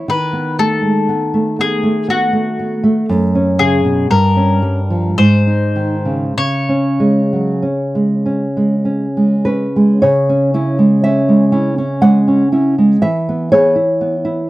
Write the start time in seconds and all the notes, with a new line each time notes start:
0.08 D#3 B4
0.33 B3
0.59 A3 A4
0.83 G#3
1.09 B3
1.34 A3
1.59 B3 G#4
1.83 A3
2.08 B3 F#4
2.33 A3
2.59 B3
2.84 A3
3.09 F#2
3.35 C#4
3.59 C#3 G#4
3.85 B2
4.11 G2 A#4
4.37 C#4
4.62 G3
4.90 F3
5.18 G#2 C5
5.47 D#4
5.76 D#3
6.05 C#3
6.37 C#3 C#5
6.69 C#4
7.00 G#3
7.33 F#3
7.62 C#4
7.95 G#3
8.26 C#4
8.57 G#3
8.85 C#4
9.17 G#3
9.45 C#4 B4
9.76 G#3
10.02 C#3 C#5
10.29 C#4
10.54 C#4 E4
10.79 G#3
11.04 C#4 E5
11.29 G#3
11.52 C#4 E4
11.78 C#4
12.01 G#3 F#5
12.28 C#4
12.52 C#4 E4
12.78 G#3
13.02 E3 E5
13.29 B3
13.52 B3 G#4 C#5
13.76 E4
14.01 B3
14.25 E4